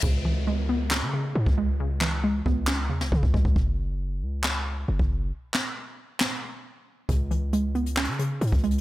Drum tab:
CC |x-----------------------------------------------------------------------------------------------|------------------------------------------------------------------------------------------------|------------------------------------------------------------------------------------------------|------------------------------------------------------------------------------------------------|
HH |------------------------------------------------------------------------------------------------|------------------------------------------------------------------------------------------------|------------------------------------------------------------------------------------------------|------------------------------------------------------------------------------------------------|
CP |------------------------------------------------x-----------------------------------------------|------------x-----------------------------------x-----------------------------------------------|------------------------------------------------x-----------------------------------------------|------------x-----------------------------------x-----------------------------------------------|
SD |------------------------------------------------o-----------------------------------------------|------------o-----------------------------------o-----------------o-----------------------------|------------------------------------------------o-----------------------------------------------|------------o-----------------------------------o-----------------------------------------------|
BD |o-----------------------------------------------------------------------------o-----------------|------------------------------------o-----------------------------------o-----o-----o-----o-----|o-----------------------------------------------------------------------------o-----------------|------------------------------------------------------------------------------------------------|

CC |------------------------------------------------------------------------------------------------|
HH |x-----------x-----------x-----------x-----x---------x---x---x-----------x--x--x--x--x---x-------|
CP |------------------------------------------------x-----------------------------------------------|
SD |------------------------------------------------o-----------------------------------------------|
BD |o-----------------------------------------------------------------------------o-----------------|